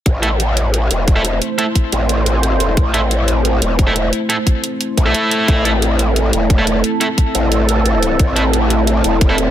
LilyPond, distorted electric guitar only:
\new Staff \with { instrumentName = "Distorted electric guitar" } { \time 4/4 \key a \minor \tempo 4 = 177 r8 <a e' a'>16 r2 r8 <a e' a'>16 r8 | r8 <a e' a'>16 r2. r16 | r8 <a e' a'>16 r2 r8 <a e' a'>16 r8 | r8 <a e' a'>16 r2 <a e' a'>4~ <a e' a'>16~ |
<a e' a'>8 <a e' a'>16 r2 r8 <a e' a'>16 r8 | r8 <a e' a'>16 r2. r16 | r8 <a e' a'>16 r2 r8 <a e' a'>16 r8 | }